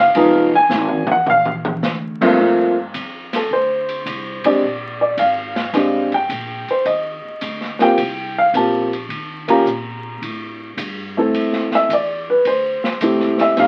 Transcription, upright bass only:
0, 0, Header, 1, 3, 480
1, 0, Start_track
1, 0, Key_signature, -2, "minor"
1, 0, Tempo, 559701
1, 129, Time_signature, 4, 2, 24, 8
1, 11727, End_track
2, 0, Start_track
2, 0, Title_t, "Upright bass"
2, 0, Program_c, 0, 32
2, 0, Note_on_c, 0, 30, 93
2, 111, Note_off_c, 0, 30, 0
2, 129, Note_on_c, 0, 29, 86
2, 591, Note_off_c, 0, 29, 0
2, 596, Note_on_c, 0, 32, 93
2, 909, Note_off_c, 0, 32, 0
2, 1083, Note_on_c, 0, 34, 92
2, 1551, Note_off_c, 0, 34, 0
2, 1565, Note_on_c, 0, 38, 88
2, 2032, Note_off_c, 0, 38, 0
2, 2049, Note_on_c, 0, 43, 74
2, 2514, Note_off_c, 0, 43, 0
2, 2523, Note_on_c, 0, 41, 84
2, 2991, Note_off_c, 0, 41, 0
2, 3008, Note_on_c, 0, 38, 74
2, 3472, Note_off_c, 0, 38, 0
2, 3477, Note_on_c, 0, 36, 80
2, 3790, Note_off_c, 0, 36, 0
2, 3965, Note_on_c, 0, 34, 82
2, 4432, Note_off_c, 0, 34, 0
2, 4436, Note_on_c, 0, 32, 86
2, 4908, Note_off_c, 0, 32, 0
2, 4916, Note_on_c, 0, 31, 74
2, 5388, Note_off_c, 0, 31, 0
2, 5396, Note_on_c, 0, 34, 78
2, 5710, Note_off_c, 0, 34, 0
2, 5877, Note_on_c, 0, 39, 76
2, 6191, Note_off_c, 0, 39, 0
2, 6361, Note_on_c, 0, 38, 89
2, 6673, Note_off_c, 0, 38, 0
2, 6845, Note_on_c, 0, 36, 83
2, 7313, Note_off_c, 0, 36, 0
2, 7319, Note_on_c, 0, 34, 80
2, 7790, Note_off_c, 0, 34, 0
2, 7794, Note_on_c, 0, 39, 77
2, 8267, Note_off_c, 0, 39, 0
2, 8277, Note_on_c, 0, 46, 85
2, 8748, Note_off_c, 0, 46, 0
2, 8761, Note_on_c, 0, 45, 79
2, 9231, Note_off_c, 0, 45, 0
2, 9237, Note_on_c, 0, 43, 76
2, 9708, Note_off_c, 0, 43, 0
2, 9713, Note_on_c, 0, 41, 75
2, 10186, Note_off_c, 0, 41, 0
2, 10197, Note_on_c, 0, 40, 78
2, 10668, Note_off_c, 0, 40, 0
2, 10677, Note_on_c, 0, 38, 77
2, 10990, Note_off_c, 0, 38, 0
2, 11155, Note_on_c, 0, 36, 77
2, 11627, Note_off_c, 0, 36, 0
2, 11635, Note_on_c, 0, 33, 84
2, 11727, Note_off_c, 0, 33, 0
2, 11727, End_track
3, 0, Start_track
3, 0, Title_t, "Muted upright bass strokes"
3, 931, Note_on_c, 9, 29, 38
3, 1017, Note_off_c, 9, 29, 0
3, 3814, Note_on_c, 9, 29, 36
3, 3899, Note_off_c, 9, 29, 0
3, 5731, Note_on_c, 9, 29, 39
3, 5817, Note_off_c, 9, 29, 0
3, 6218, Note_on_c, 9, 29, 39
3, 6304, Note_off_c, 9, 29, 0
3, 6697, Note_on_c, 9, 29, 36
3, 6783, Note_off_c, 9, 29, 0
3, 11011, Note_on_c, 9, 29, 31
3, 11097, Note_off_c, 9, 29, 0
3, 11727, End_track
0, 0, End_of_file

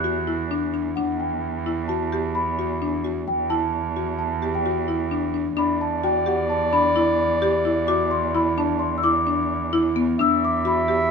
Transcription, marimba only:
0, 0, Header, 1, 2, 480
1, 0, Start_track
1, 0, Key_signature, 1, "minor"
1, 0, Tempo, 461184
1, 1007, Time_signature, 5, 2, 24, 8
1, 11562, End_track
2, 0, Start_track
2, 0, Title_t, "Marimba"
2, 0, Program_c, 0, 12
2, 44, Note_on_c, 0, 66, 74
2, 258, Note_off_c, 0, 66, 0
2, 285, Note_on_c, 0, 64, 61
2, 499, Note_off_c, 0, 64, 0
2, 531, Note_on_c, 0, 62, 75
2, 742, Note_off_c, 0, 62, 0
2, 768, Note_on_c, 0, 62, 59
2, 981, Note_off_c, 0, 62, 0
2, 1009, Note_on_c, 0, 62, 71
2, 1435, Note_off_c, 0, 62, 0
2, 1731, Note_on_c, 0, 64, 62
2, 1943, Note_off_c, 0, 64, 0
2, 1969, Note_on_c, 0, 66, 67
2, 2181, Note_off_c, 0, 66, 0
2, 2212, Note_on_c, 0, 67, 61
2, 2636, Note_off_c, 0, 67, 0
2, 2693, Note_on_c, 0, 66, 62
2, 2904, Note_off_c, 0, 66, 0
2, 2933, Note_on_c, 0, 62, 70
2, 3144, Note_off_c, 0, 62, 0
2, 3168, Note_on_c, 0, 66, 62
2, 3594, Note_off_c, 0, 66, 0
2, 3646, Note_on_c, 0, 64, 61
2, 4073, Note_off_c, 0, 64, 0
2, 4126, Note_on_c, 0, 66, 57
2, 4553, Note_off_c, 0, 66, 0
2, 4604, Note_on_c, 0, 67, 58
2, 4819, Note_off_c, 0, 67, 0
2, 4847, Note_on_c, 0, 66, 69
2, 5060, Note_off_c, 0, 66, 0
2, 5080, Note_on_c, 0, 64, 56
2, 5296, Note_off_c, 0, 64, 0
2, 5321, Note_on_c, 0, 62, 66
2, 5537, Note_off_c, 0, 62, 0
2, 5560, Note_on_c, 0, 62, 62
2, 5776, Note_off_c, 0, 62, 0
2, 5797, Note_on_c, 0, 62, 77
2, 6227, Note_off_c, 0, 62, 0
2, 6282, Note_on_c, 0, 66, 73
2, 6497, Note_off_c, 0, 66, 0
2, 6517, Note_on_c, 0, 67, 68
2, 6947, Note_off_c, 0, 67, 0
2, 7002, Note_on_c, 0, 62, 66
2, 7217, Note_off_c, 0, 62, 0
2, 7241, Note_on_c, 0, 64, 69
2, 7670, Note_off_c, 0, 64, 0
2, 7722, Note_on_c, 0, 67, 81
2, 7937, Note_off_c, 0, 67, 0
2, 7963, Note_on_c, 0, 64, 70
2, 8178, Note_off_c, 0, 64, 0
2, 8203, Note_on_c, 0, 66, 78
2, 8631, Note_off_c, 0, 66, 0
2, 8687, Note_on_c, 0, 64, 68
2, 8900, Note_off_c, 0, 64, 0
2, 8928, Note_on_c, 0, 62, 69
2, 9354, Note_off_c, 0, 62, 0
2, 9407, Note_on_c, 0, 64, 69
2, 9620, Note_off_c, 0, 64, 0
2, 9646, Note_on_c, 0, 62, 70
2, 10073, Note_off_c, 0, 62, 0
2, 10127, Note_on_c, 0, 64, 84
2, 10340, Note_off_c, 0, 64, 0
2, 10366, Note_on_c, 0, 59, 69
2, 10580, Note_off_c, 0, 59, 0
2, 10609, Note_on_c, 0, 62, 79
2, 11036, Note_off_c, 0, 62, 0
2, 11086, Note_on_c, 0, 66, 74
2, 11301, Note_off_c, 0, 66, 0
2, 11327, Note_on_c, 0, 67, 63
2, 11562, Note_off_c, 0, 67, 0
2, 11562, End_track
0, 0, End_of_file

